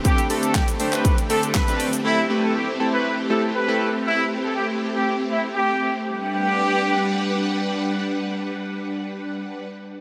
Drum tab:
HH |xxoxxxoxxxoxxxox|----------------|----------------|----------------|
SH |xxxxxxxxxxxxxxxx|----------------|----------------|----------------|
CP |----x--x----x---|----------------|----------------|----------------|
SD |----o-------o---|----------------|----------------|----------------|
BD |o---o---o---o---|----------------|----------------|----------------|

HH |----------------|
SH |----------------|
CP |----------------|
SD |----------------|
BD |----------------|